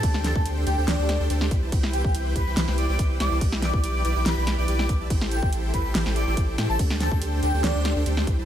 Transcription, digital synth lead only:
0.24 A5
0.35 A5
0.67 G5
0.88 D5
1.93 G5
2.05 G5
2.36 B5
2.78 D6
2.89 D6
3.20 D6
3.62 D6
4.05 D6
4.26 B5
4.58 D6
5.32 G5
5.43 G5
5.74 B5
6.16 D6
6.27 D6
6.69 A5
7.01 A5
7.12 A5
7.43 G5
7.64 D5

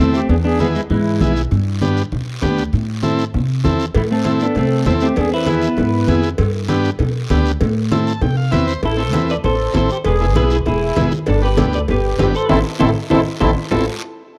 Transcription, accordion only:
0.00 A4
0.16 G4
0.30 G#4
0.46 G#4
0.61 G#4
0.76 E4
0.92 E4
3.96 E4
4.12 A4
4.42 A4
4.58 A4
4.88 A4
5.04 G4
5.18 G#4
5.34 B4
5.48 B4
8.84 E4
8.99 A4
9.30 A4
9.45 A4
9.75 A4
9.91 G4
10.05 G#4
10.37 G#4
10.53 E4
10.68 E4
11.30 D4
11.45 G4
11.76 A4
11.91 G4
12.22 G4
12.36 A4
12.49 C4 E4 A4
12.80 C4 E4 A4
13.11 C4 E4 A4
13.42 C4 E4 A4
13.73 E4

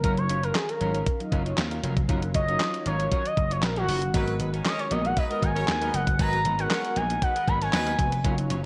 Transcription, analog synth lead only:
0.04 A#4
0.18 C#5
0.44 A#4
0.55 G#4
0.69 A#4
2.35 D#5
2.87 C#5
3.12 C#5
3.26 D#5
3.52 C#5
3.64 A#4
3.77 F#4
4.66 D#5
4.79 C#5
4.92 D#5
5.06 F#5
5.18 D#5
5.43 G#5
5.94 F#5
6.20 A#5
6.60 F#5
6.97 G#5
7.23 F#5
7.48 B5
7.62 G#5

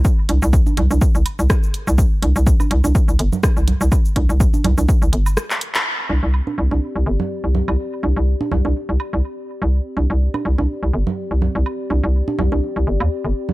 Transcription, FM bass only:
0.29 C2
0.42 C2
0.77 C2
0.91 C2
1.15 C2
1.39 C2
1.87 C2
2.23 C2
2.36 C2
2.71 C2
2.84 C2
3.08 C2
3.19 G1
3.57 C2
3.81 C2
4.16 C2
4.29 C2
4.64 C2
4.78 C2
5.02 C2
5.13 G1
6.10 C2
6.23 C2
6.58 C2
6.71 C2
6.96 C2
7.06 G1
7.44 C2
7.68 C2
8.03 C2
8.17 C2
8.52 C2
8.65 C2
8.89 C2
9.13 C2
9.62 C2
9.97 C2
10.10 C2
10.45 C2
10.58 C2
10.83 C2
10.94 G1
11.31 C2
11.55 C2
11.90 C2
12.04 C2
12.39 C2
12.52 C2
12.76 C2
12.87 G1
13.00 D#2
13.25 G1

